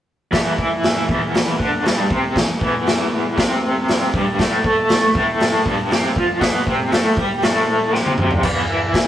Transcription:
0.31 overdriven electric guitar E2 E3, kick, snare, open hi-hat
0.56 overdriven electric guitar E3 E4, kick
0.83 snare, open hi-hat
1.07 overdriven electric guitar E2 E3, kick
1.35 snare, open hi-hat
1.57 overdriven electric guitar D3 D4, kick
1.82 overdriven electric guitar G2 G3, open hi-hat
1.87 snare
2.08 overdriven electric guitar C3 C4, kick
2.35 overdriven electric guitar E2, kick, snare, open hi-hat
2.59 overdriven electric guitar E2 E3, kick
2.87 snare, open hi-hat
3.37 overdriven electric guitar C3 C4, kick, snare, open hi-hat
3.88 snare, open hi-hat
4.14 overdriven electric guitar G2 G3, kick
4.39 overdriven electric guitar A2 A3, kick, snare, open hi-hat
4.63 overdriven electric guitar A3 A4, kick
4.89 snare, open hi-hat
5.15 overdriven electric guitar A2 A3, kick
5.40 snare, open hi-hat
5.65 overdriven electric guitar G2 G3, kick
5.90 overdriven electric guitar C3 C4, snare, open hi-hat
6.16 overdriven electric guitar F3 F4, kick
6.40 overdriven electric guitar B2 B3, kick, snare, open hi-hat
6.67 overdriven electric guitar C3 C4, kick
6.92 overdriven electric guitar A2 A3, snare, open hi-hat
7.17 overdriven electric guitar G3 G4, kick
7.42 overdriven electric guitar A2 A3, snare, open hi-hat
7.93 overdriven electric guitar C3 C4, snare
8.06 high tom
8.18 mid tom
8.31 floor tom
8.42 overdriven electric guitar E2 E3, kick, crash
8.67 overdriven electric guitar E3 E4
8.94 kick, snare, open hi-hat

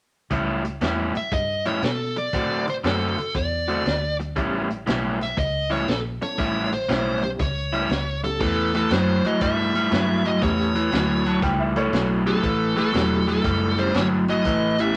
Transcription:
0.30 fingered electric bass C#2, overdriven electric guitar A2 G3 C#4 E4, kick, closed hi-hat
0.65 muted overdriven electric guitar stroke, closed hi-hat
0.81 fingered electric bass E2, overdriven electric guitar A2 G3 C#4 E4, snare, closed hi-hat
1.15 lead electric guitar E5, muted overdriven electric guitar stroke, muted fingered electric bass stroke, closed hi-hat
1.31 fingered electric bass G2, lead electric guitar D#5, muted overdriven electric guitar stroke, kick, closed hi-hat
1.66 overdriven electric guitar A2 G3 C#4 E4, lead electric guitar C#5, closed hi-hat
1.82 fingered electric bass B2, lead electric guitar A4, muted overdriven electric guitar stroke, snare, closed hi-hat
2.16 lead electric guitar D5, muted overdriven electric guitar stroke, closed hi-hat
2.33 fingered electric bass A2, overdriven electric guitar D3 A3 C4 F#4, kick, closed hi-hat
2.67 lead electric guitar C5, muted overdriven electric guitar stroke, closed hi-hat
2.84 fingered electric bass F#2, overdriven electric guitar D3 A3 C4 F#4, lead electric guitar A4, snare, closed hi-hat
3.18 muted overdriven electric guitar stroke, muted fingered electric bass stroke, closed hi-hat
3.35 fingered electric bass E2, lead electric guitar D5, muted overdriven electric guitar stroke, kick, closed hi-hat
3.68 overdriven electric guitar D3 A3 C4 F#4, closed hi-hat
3.85 fingered electric bass D2, muted overdriven electric guitar stroke, snare, closed hi-hat
4.20 muted overdriven electric guitar stroke, closed hi-hat
4.36 fingered electric bass A1, overdriven electric guitar A2 G3 C#4 E4, reed electric piano B3 C#4 E4 G4, kick, closed hi-hat
4.69 muted overdriven electric guitar stroke, closed hi-hat
4.86 fingered electric bass B1, overdriven electric guitar A2 G3 C#4 E4, snare, closed hi-hat
5.20 lead electric guitar E5, muted overdriven electric guitar stroke, snare, closed hi-hat
5.37 fingered electric bass C#2, lead electric guitar D#5, muted overdriven electric guitar stroke, kick, closed hi-hat
5.70 overdriven electric guitar A2 G3 C#4 E4, lead electric guitar C#5, closed hi-hat
5.87 fingered electric bass A#1, lead electric guitar A4, muted overdriven electric guitar stroke, snare, closed hi-hat
6.21 reed electric piano B3 C#4 E4 A4, lead electric guitar C#5, muted overdriven electric guitar stroke, closed hi-hat
6.38 fingered electric bass A1, overdriven electric guitar A2 G3 C#4 E4, kick, closed hi-hat
6.72 lead electric guitar C5, muted overdriven electric guitar stroke, closed hi-hat
6.88 fingered electric bass B1, overdriven electric guitar A2 G3 C#4 E4, snare, closed hi-hat
7.23 reed electric piano B3 C#4 E4 G4, lead electric guitar C5, muted overdriven electric guitar stroke, closed hi-hat
7.39 fingered electric bass C#2, lead electric guitar C#5, muted overdriven electric guitar stroke, kick, snare, closed hi-hat
7.73 overdriven electric guitar A2 G3 C#4 E4, closed hi-hat
7.90 fingered electric bass C#2, muted overdriven electric guitar stroke, snare, closed hi-hat
8.24 reed electric piano A2 B3 C#4 E4 G4, lead electric guitar A4, muted overdriven electric guitar stroke, closed hi-hat
8.40 fingered electric bass E2, overdriven electric guitar A2 E3, lead electric guitar A4, kick, crash
8.74 overdriven electric guitar A2 E3, lead electric guitar A4, closed hi-hat
8.90 fingered electric bass F#2, overdriven electric guitar A2 F#3, lead electric guitar C5, snare, closed hi-hat
9.24 overdriven electric guitar A2 F#3, lead electric guitar D#5, muted fingered electric bass stroke, closed hi-hat
9.41 fingered electric bass G2, overdriven electric guitar A2 G3, lead electric guitar E5, kick, closed hi-hat
9.75 overdriven electric guitar A2 G3, closed hi-hat
9.91 fingered electric bass G2, overdriven electric guitar A2 F#3, snare, closed hi-hat
10.25 overdriven electric guitar A2 F#3, lead electric guitar D#5, closed hi-hat
10.41 fingered electric bass E2, overdriven electric guitar A2 E3, reed electric piano A3 B3 C#4 E4 G4, lead electric guitar C#5, kick, closed hi-hat
10.75 overdriven electric guitar A2 E3, closed hi-hat
10.92 fingered electric bass D2, overdriven electric guitar A2 F#3, snare, closed hi-hat
11.25 overdriven electric guitar A2 F#3, upright piano A5, closed hi-hat
11.42 fingered electric bass C#2, overdriven electric guitar A2 G3, upright piano G5, kick, snare, closed hi-hat
11.59 upright piano E5
11.76 overdriven electric guitar A2 G3, upright piano A4 C#5, closed hi-hat
11.92 fingered electric bass B1, overdriven electric guitar A2 F#3, snare, closed hi-hat
12.26 overdriven electric guitar A2 F#3, reed electric piano A3 B3 C#4 E4 G4, lead electric guitar A4, closed hi-hat
12.43 fingered electric bass A1, overdriven electric guitar A2 E3, kick, closed hi-hat
12.76 overdriven electric guitar A2 E3, lead electric guitar A4, closed hi-hat
12.93 fingered electric bass E1, overdriven electric guitar A2 F#3, reed electric piano A3 B3 C#4 E4 G4, snare, closed hi-hat
13.27 overdriven electric guitar A2 F#3, lead electric guitar A4, closed hi-hat
13.44 fingered electric bass F#1, overdriven electric guitar A2 G3, kick, closed hi-hat
13.78 overdriven electric guitar A2 G3, reed electric piano A3 B3 C#4 E4 G4, lead electric guitar C5, closed hi-hat
13.94 fingered electric bass G1, overdriven electric guitar A2 F#3, lead electric guitar C#5, snare, closed hi-hat
14.28 overdriven electric guitar A2 F#3, lead electric guitar D#5, closed hi-hat
14.45 fingered electric bass A1, overdriven electric guitar A2 E3, kick, closed hi-hat
14.78 overdriven electric guitar A2 E3, reed electric piano A3 B3 C#4 E4 G4, lead electric guitar E5, closed hi-hat

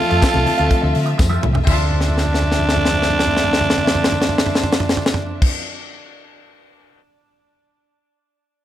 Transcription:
Already playing: string section D3 F3 A3 C4 E5, tenor saxophone F4, violin section A4 A5
0.10 fingered electric bass F2, clean electric guitar C4 F4 A4 E5, closed hi-hat
0.21 clean electric guitar C4 F4 A4 E5, kick, snare, closed hi-hat, tambourine, muted conga
0.34 fingered electric bass C2, muted clean electric guitar stroke, high conga
0.46 muted clean electric guitar stroke, open hi-hat, muted conga, low conga
0.58 fingered electric bass D2, clean electric guitar C4 F4 A4 F5, closed hi-hat
0.70 muted clean electric guitar stroke, kick, closed hi-hat, muted conga
0.82 fingered electric bass D2, muted clean electric guitar stroke
0.95 fingered electric bass D3, open hi-hat
1.06 muted clean electric guitar stroke, closed hi-hat
1.18 fingered electric bass F2, muted clean electric guitar stroke, kick, snare, tambourine
1.29 clean electric guitar C4 F4 A4 E5, high conga
1.42 fingered electric bass C2, muted clean electric guitar stroke, mid tom, muted conga, low conga
1.53 muted clean electric guitar stroke, floor tom, low conga
1.65 fingered electric bass D2, string section D3 F3 A3 C4 E5, clean electric guitar C4 F4 A4, tenor saxophone D4, violin section F4 E5 A5, kick, crash, tambourine, high conga
1.70 clean electric guitar E5
1.91 floor tom
2.01 snare
2.08 floor tom
2.18 snare
2.25 floor tom
2.34 snare
2.42 floor tom
2.52 snare
2.59 floor tom
2.69 snare
2.76 floor tom
2.85 snare
2.93 floor tom
3.02 snare
3.10 floor tom
3.19 snare
3.27 floor tom
3.37 snare
3.44 floor tom
3.53 snare
3.61 floor tom
3.70 snare
3.78 floor tom
3.87 snare
3.95 floor tom
4.04 snare
4.12 floor tom
4.22 snare
4.29 floor tom
4.38 snare
4.46 floor tom
4.55 snare
4.63 floor tom
4.72 snare
4.80 floor tom
4.89 snare
4.97 floor tom
5.06 snare
5.14 floor tom
5.42 kick, crash

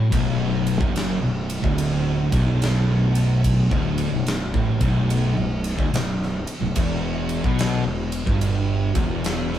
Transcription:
Already playing: distorted electric guitar A2
0.11 fingered electric bass B0, distorted electric guitar B1, string machine F#3 B3 D4, kick, ride
0.67 ride
0.81 fingered electric bass F#1, distorted electric guitar F#2, kick
0.96 snare, ride
1.22 fingered electric bass B0, distorted electric guitar B1
1.50 ride
1.63 fingered electric bass D1, distorted electric guitar D2, kick
1.78 ride
2.32 fingered electric bass B0, distorted electric guitar B1, kick, ride
2.62 snare, ride
3.15 ride
3.44 kick, ride
3.71 fingered electric bass D1, distorted electric guitar D2, kick
3.98 ride
4.12 fingered electric bass B0, distorted electric guitar B1
4.27 snare, ride
4.54 fingered electric bass A1, distorted electric guitar A2, kick
4.80 fingered electric bass B0, distorted electric guitar B1, kick, ride
5.10 ride
5.36 fingered electric bass B0, distorted electric guitar B1
5.64 snare, ride
5.78 fingered electric bass D1, distorted electric guitar D2, kick
5.93 fingered electric bass B0, distorted electric guitar B1, snare, ride
6.23 snare
6.47 ride
6.61 fingered electric bass B0, distorted electric guitar B1
6.75 fingered electric bass E1, distorted electric guitar E2, string machine E3 B3 F#4, kick, ride
7.29 ride
7.44 fingered electric bass B1, distorted electric guitar B2, kick
7.59 snare, ride
7.85 fingered electric bass E1, distorted electric guitar E2
8.12 ride
8.26 fingered electric bass G1, distorted electric guitar G2, kick
8.41 ride
8.95 fingered electric bass E1, distorted electric guitar E2, kick, ride
9.24 snare, ride
9.53 snare

